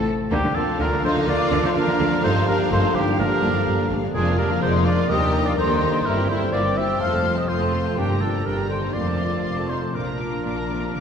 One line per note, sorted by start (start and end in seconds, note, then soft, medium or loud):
0.00 0.33 C3 medium
0.00 1.63 F3 soft
0.00 0.34 A3 soft
0.00 0.15 C4 soft
0.00 0.96 F4 medium
0.17 0.34 C4 soft
0.30 0.36 D2 medium
0.30 0.36 D3 medium
0.30 1.28 D3 medium
0.30 4.10 D3 medium
0.30 4.10 F3 medium
0.30 4.09 A#3 medium
0.30 0.36 A#3 medium
0.30 0.39 A#3 medium
0.30 4.09 D4 medium
0.30 0.43 D#4 medium
0.30 2.19 F4 medium
0.30 0.56 G4 loud
0.30 4.10 F5 medium
0.30 0.54 G5 medium
0.43 0.49 D3 medium
0.43 0.48 A3 medium
0.49 0.80 A#3 soft
0.55 0.60 D2 medium
0.55 0.61 D3 medium
0.55 0.60 A#3 medium
0.55 0.79 C4 medium
0.55 0.79 F4 medium
0.55 0.79 A4 medium
0.55 0.80 A5 medium
0.79 0.84 D2 medium
0.79 0.84 D3 medium
0.79 0.85 A#3 medium
0.79 1.12 A#3 medium
0.79 0.88 D4 medium
0.79 0.91 F4 medium
0.79 1.03 A#4 medium
0.79 1.04 A#5 medium
0.92 0.97 D3 medium
0.92 0.97 A3 medium
0.97 1.92 F4 medium
1.03 1.08 D2 medium
1.03 1.09 D3 medium
1.03 1.09 A#3 medium
1.03 1.27 D#4 medium
1.03 1.29 A4 medium
1.03 1.15 C5 medium
1.03 1.11 C6 medium
1.13 1.21 D3 medium
1.13 1.61 A#3 medium
1.13 1.21 A#3 medium
1.27 1.32 D2 medium
1.27 1.33 D3 medium
1.27 2.26 D3 medium
1.27 1.33 A3 medium
1.27 1.64 F4 medium
1.27 1.65 A#4 medium
1.27 1.63 D5 loud
1.27 1.62 D6 medium
1.46 1.76 D4 medium
1.51 1.56 D2 medium
1.51 1.56 D3 medium
1.51 1.56 A#3 medium
1.63 1.68 D3 medium
1.63 1.69 A3 medium
1.63 2.08 A#3 soft
1.63 1.76 D#4 medium
1.63 1.77 A4 medium
1.63 1.70 C5 medium
1.63 1.76 C6 medium
1.75 1.80 D2 medium
1.75 1.81 D3 medium
1.75 1.81 A#3 medium
1.75 2.22 D4 medium
1.75 5.68 D4 medium
1.75 2.23 F4 medium
1.75 2.23 A#4 medium
1.75 2.23 A#5 medium
1.88 1.93 D3 medium
1.88 1.93 A#3 medium
1.93 2.87 F4 soft
1.99 2.04 D2 medium
1.99 2.05 D3 medium
1.99 2.04 A3 medium
2.09 2.17 D3 medium
2.09 2.40 A#3 medium
2.09 2.17 A#3 medium
2.23 2.28 G1 medium
2.23 2.28 G2 medium
2.23 4.16 G2 medium
2.23 2.28 A#3 medium
2.23 2.46 D#4 medium
2.23 4.10 G4 medium
2.23 2.34 A4 medium
2.23 2.47 C5 loud
2.23 2.47 C6 medium
2.36 2.40 G2 medium
2.36 2.40 A3 medium
2.41 2.72 A#3 medium
2.47 2.52 G1 medium
2.47 2.52 G2 medium
2.47 2.53 A#3 medium
2.47 2.71 D4 medium
2.47 2.70 G4 medium
2.47 2.59 A#4 medium
2.47 2.71 A#5 medium
2.57 3.19 D3 soft
2.71 2.76 G1 medium
2.71 2.76 G2 medium
2.71 2.76 A#3 medium
2.71 3.03 A#3 medium
2.71 2.95 D#4 medium
2.71 2.94 A4 medium
2.71 2.97 C5 loud
2.71 2.77 C6 medium
2.83 2.88 G2 medium
2.83 2.87 A3 medium
2.88 3.81 F4 medium
2.94 2.99 G1 medium
2.94 3.00 G2 medium
2.94 2.99 A#3 medium
2.94 3.04 A#3 medium
2.94 3.21 D#4 medium
2.94 3.19 G4 medium
2.94 3.18 G5 medium
3.04 3.11 G2 medium
3.04 3.34 A#3 medium
3.04 3.11 A#3 medium
3.19 3.24 G1 medium
3.19 3.24 G2 medium
3.19 3.50 D3 medium
3.19 3.23 A3 medium
3.19 3.89 D4 medium
3.19 3.90 G4 medium
3.19 3.89 A#4 loud
3.19 3.90 A#5 medium
3.36 3.65 A#3 soft
3.43 3.48 G1 medium
3.43 3.47 G2 medium
3.43 3.48 A#3 medium
3.51 3.59 G2 medium
3.51 4.16 D3 medium
3.56 3.60 A3 medium
3.66 3.71 G1 medium
3.66 3.71 G2 medium
3.66 3.98 A#3 soft
3.66 3.71 A#3 medium
3.78 3.83 G2 medium
3.78 3.84 A#3 medium
3.82 4.30 F4 medium
3.90 3.94 G1 medium
3.90 3.95 G2 medium
3.90 3.96 A3 medium
3.99 4.06 G2 medium
3.99 4.46 A#3 soft
4.04 4.08 A#3 medium
4.12 4.55 F1 medium
4.12 4.81 F2 medium
4.12 4.56 F2 medium
4.12 5.04 D3 medium
4.12 5.04 F3 medium
4.12 5.11 F3 medium
4.12 4.26 G#3 medium
4.12 5.04 A#3 medium
4.12 4.36 D4 medium
4.12 4.26 D4 medium
4.12 4.36 F4 medium
4.12 4.36 G#4 medium
4.12 5.04 A#4 medium
4.12 4.25 D5 medium
4.12 4.21 G#5 medium
4.26 4.39 A#3 medium
4.26 4.38 F4 medium
4.26 4.38 F5 soft
4.31 4.62 F4 medium
4.38 4.50 G#3 medium
4.38 4.61 D4 medium
4.38 4.50 D4 medium
4.38 4.49 G4 medium
4.38 4.61 A#4 medium
4.38 4.50 D5 medium
4.38 4.61 A#5 medium
4.47 5.24 A#3 soft
4.47 4.62 A#3 medium
4.47 4.61 F5 medium
4.51 4.62 F4 medium
4.61 5.03 F1 medium
4.61 5.03 F2 medium
4.61 4.73 G#3 medium
4.61 4.73 D4 medium
4.61 4.85 D#4 medium
4.61 4.94 F4 medium
4.61 4.88 G#4 medium
4.61 4.73 C5 medium
4.61 4.73 D5 medium
4.61 4.85 C6 medium
4.74 4.86 A#3 medium
4.74 4.85 F4 medium
4.74 4.86 F5 medium
4.79 6.08 D5 medium
4.86 4.97 G#3 soft
4.86 4.97 D4 soft
4.86 5.09 F4 medium
4.86 5.09 A#4 medium
4.86 5.11 D5 medium
4.86 4.98 D5 medium
4.86 5.09 D6 medium
4.95 5.09 A#3 soft
4.95 5.11 F4 medium
4.95 5.09 F4 medium
4.99 5.10 F5 soft
5.08 5.51 D#2 medium
5.08 6.03 D#3 medium
5.08 6.07 D#3 medium
5.08 6.03 G3 medium
5.08 5.20 G3 medium
5.08 6.05 D4 medium
5.08 5.20 D#4 medium
5.08 5.44 G4 medium
5.08 5.44 A#4 medium
5.08 6.03 A#4 medium
5.08 5.45 D#5 medium
5.08 5.21 A#5 medium
5.08 5.45 D#6 medium
5.21 5.34 A#3 medium
5.21 5.34 D4 medium
5.21 5.33 G5 soft
5.26 5.57 A#3 soft
5.33 5.45 G3 soft
5.33 5.45 D#4 medium
5.33 5.45 A#5 medium
5.42 5.57 A#3 medium
5.42 5.57 D4 soft
5.42 6.07 D#4 soft
5.42 5.59 A#4 medium
5.42 5.57 D5 medium
5.42 5.57 G5 soft
5.42 5.57 D6 medium
5.47 5.58 F4 medium
5.57 5.99 D#2 medium
5.57 5.68 G3 soft
5.57 5.89 A#3 soft
5.57 5.68 D#4 soft
5.57 6.05 D#4 medium
5.57 6.05 A4 medium
5.57 6.07 C5 medium
5.57 5.68 A#5 medium
5.57 6.04 C6 medium
5.69 5.81 A#3 soft
5.69 5.81 D4 soft
5.69 5.81 G5 soft
5.74 7.02 G4 soft
5.81 5.93 G3 soft
5.81 5.93 D#4 soft
5.81 5.93 A#5 soft
5.90 7.03 A#3 soft
5.90 6.03 A#3 soft
5.90 6.04 D4 soft
5.90 6.05 G5 soft
6.04 6.47 G1 medium
6.04 6.46 G2 medium
6.04 7.02 G2 medium
6.04 6.83 E3 medium
6.04 6.83 G3 medium
6.04 6.15 A#3 medium
6.04 6.98 C4 medium
6.04 6.15 E4 medium
6.04 6.28 E4 medium
6.04 6.31 G4 medium
6.04 6.29 A#4 medium
6.04 6.98 C5 medium
6.04 6.16 E5 medium
6.04 6.29 A#5 medium
6.16 6.28 C4 soft
6.16 6.28 G4 soft
6.16 6.29 G5 soft
6.21 6.52 C4 soft
6.27 6.40 A#3 medium
6.27 6.40 E4 medium
6.27 6.52 E4 medium
6.27 6.53 A4 medium
6.27 6.54 C5 medium
6.27 6.40 E5 soft
6.27 6.53 C6 medium
6.37 7.02 G3 soft
6.37 6.52 C4 soft
6.37 6.52 G4 soft
6.41 6.53 G5 soft
6.52 6.94 G1 medium
6.52 6.95 G2 medium
6.52 6.63 A#3 soft
6.52 6.83 C4 soft
6.52 6.63 E4 soft
6.52 6.60 F4 medium
6.52 6.80 A#4 medium
6.52 6.79 D5 medium
6.52 6.63 E5 soft
6.52 6.77 D6 medium
6.64 6.76 C4 soft
6.64 6.76 G4 soft
6.64 6.76 G5 soft
6.68 7.02 E4 soft
6.76 6.88 A#3 soft
6.76 6.88 E4 soft
6.76 6.99 G4 medium
6.76 7.00 C5 medium
6.76 6.88 E5 soft
6.76 7.00 E5 medium
6.76 7.01 E6 medium
6.85 7.16 C4 soft
6.85 7.00 C4 soft
6.85 7.00 G4 soft
6.90 7.01 G5 soft
6.99 7.43 F1 medium
6.99 7.43 F2 medium
6.99 7.99 F2 medium
6.99 7.47 F3 medium
6.99 7.11 A3 soft
6.99 7.47 A3 medium
6.99 7.35 C4 medium
6.99 7.11 F4 soft
6.99 7.36 A4 medium
6.99 7.35 C5 soft
6.99 7.36 C5 medium
6.99 7.36 F5 medium
6.99 7.11 C6 soft
6.99 7.37 F6 medium
7.13 7.24 C4 soft
7.13 7.24 A4 soft
7.13 7.25 A5 soft
7.17 7.48 C4 soft
7.23 7.36 A3 soft
7.23 7.36 F4 soft
7.23 7.37 C6 soft
7.33 7.99 C3 soft
7.33 7.48 C4 soft
7.33 7.48 G4 medium
7.33 7.48 A4 soft
7.33 7.48 A5 soft
7.38 7.49 C5 soft
7.38 7.50 D#5 medium
7.38 7.43 D#6 medium
7.48 7.91 F1 medium
7.48 7.91 F2 medium
7.48 7.96 F3 medium
7.48 7.59 A3 soft
7.48 7.96 A3 medium
7.48 7.96 C4 soft
7.48 7.80 C4 soft
7.48 7.59 F4 soft
7.48 7.96 F4 medium
7.48 7.96 A4 medium
7.48 7.96 C5 medium
7.48 7.96 C5 soft
7.48 7.60 C6 soft
7.48 7.97 C6 medium
7.60 7.72 C4 soft
7.60 7.72 A4 soft
7.60 7.73 A5 soft
7.64 7.98 F4 soft
7.72 7.84 A3 soft
7.72 7.84 F4 soft
7.72 7.85 C6 soft
7.81 7.99 C4 soft
7.81 7.97 C4 soft
7.81 7.96 A4 soft
7.86 7.97 A5 soft
7.96 8.39 G1 medium
7.96 8.39 G2 medium
7.96 8.96 G2 soft
7.96 8.44 D3 soft
7.96 8.08 G3 soft
7.96 8.21 A#3 medium
7.96 8.44 A#3 soft
7.96 8.08 D4 soft
7.96 8.44 D4 soft
7.96 8.21 D4 soft
7.96 8.22 G4 medium
7.96 8.45 G4 soft
7.96 8.09 G5 soft
7.96 8.22 G5 medium
8.08 8.20 A#3 soft
8.08 8.21 G4 soft
8.08 8.21 A#5 soft
8.14 8.44 A#3 soft
8.19 8.32 G3 soft
8.19 8.45 C4 soft
8.19 8.32 D4 soft
8.19 8.47 F4 soft
8.19 8.47 A4 medium
8.19 8.34 G5 soft
8.19 8.28 A5 soft
8.29 8.95 D3 soft
8.29 8.44 A#3 soft
8.29 8.44 G4 soft
8.35 8.46 A#5 soft
8.44 8.87 G1 soft
8.44 8.88 G2 soft
8.44 8.68 D3 soft
8.44 8.55 G3 soft
8.44 8.92 A#3 soft
8.44 8.76 A#3 soft
8.44 8.55 D4 soft
8.44 8.68 D4 soft
8.44 8.92 D4 soft
8.44 8.68 G4 soft
8.44 8.93 G4 soft
8.44 8.69 A#4 medium
8.44 8.57 G5 soft
8.44 8.51 A#5 soft
8.56 8.69 A#3 soft
8.56 8.68 G4 soft
8.56 8.70 A#5 soft
8.62 8.96 D4 soft
8.68 8.93 D#3 soft
8.68 8.81 G3 soft
8.68 8.81 D4 soft
8.68 8.93 D#4 soft
8.68 8.80 A4 soft
8.68 8.95 C5 medium
8.68 8.82 G5 soft
8.68 8.92 C6 soft
8.77 8.95 A#3 soft
8.81 8.93 A#3 soft
8.81 8.93 G4 soft
8.81 8.94 A#5 soft
8.92 9.37 F1 soft
8.92 9.37 F2 soft
8.92 9.96 F2 soft
8.92 9.93 F3 soft
8.92 9.91 A3 soft
8.92 9.05 A3 soft
8.92 9.94 C4 soft
8.92 9.68 F4 soft
8.92 9.05 F4 soft
8.92 9.92 F4 soft
8.92 9.70 A#4 medium
8.92 9.71 D5 medium
8.92 9.05 C6 soft
8.92 9.66 D6 medium
9.05 9.18 C4 soft
9.05 9.18 A4 soft
9.05 9.18 A5 soft
9.11 9.43 C4 soft
9.18 9.30 A3 soft
9.18 9.30 F4 soft
9.18 9.31 C6 soft
9.28 9.96 C3 soft
9.28 9.43 C4 soft
9.28 9.43 A4 soft
9.33 9.44 A5 soft
9.42 9.87 F1 soft
9.42 9.88 F2 soft
9.42 9.55 A3 soft
9.42 9.77 C4 soft
9.42 9.55 F4 soft
9.42 9.55 C6 soft
9.56 9.68 C4 soft
9.56 9.68 A4 soft
9.56 9.69 A5 soft
9.68 9.81 A3 soft
9.68 9.77 D#4 soft
9.68 9.81 F4 soft
9.68 9.95 A4 soft
9.68 9.97 C5 soft
9.68 9.93 C6 soft
9.68 9.82 C6 soft
9.78 9.96 C4 soft
9.78 9.94 C4 soft
9.78 9.94 A4 soft
9.78 9.94 A5 soft
9.93 10.38 A#1 soft
9.93 10.39 A#2 soft
9.93 11.00 A#2 soft
9.93 11.00 F3 soft
9.93 11.00 A#3 soft
9.93 10.06 A#3 soft
9.93 11.00 D4 soft
9.93 11.00 F4 soft
9.93 10.06 F4 soft
9.93 11.00 A#4 medium
9.93 11.00 A#5 soft
9.93 10.06 D6 soft
10.05 10.20 A#4 soft
10.05 10.18 A#5 soft
10.09 10.20 D4 soft
10.09 10.44 D4 soft
10.18 10.32 A#3 soft
10.18 10.32 F4 soft
10.18 10.31 D6 soft
10.27 10.94 F3 soft
10.32 10.45 D4 soft
10.32 10.45 A#4 soft
10.32 10.44 A#5 soft
10.44 10.89 A#1 soft
10.44 10.53 A#2 soft
10.44 10.56 A#3 soft
10.44 10.77 D4 soft
10.44 10.56 F4 soft
10.44 10.56 D6 soft
10.56 10.69 D4 soft
10.56 10.69 A#4 soft
10.56 10.70 A#5 soft
10.62 11.00 F4 soft
10.69 10.94 C3 soft
10.69 10.82 A#3 soft
10.69 10.82 F4 soft
10.69 10.82 D6 soft
10.78 11.00 D4 soft
10.78 10.94 D4 soft
10.78 10.94 A#4 soft
10.83 10.95 A#5 soft
10.94 11.00 A#1 soft
10.94 11.00 D3 soft
10.94 11.00 F3 soft
10.94 11.00 A#3 soft
10.94 11.00 F4 soft
10.94 11.00 D6 soft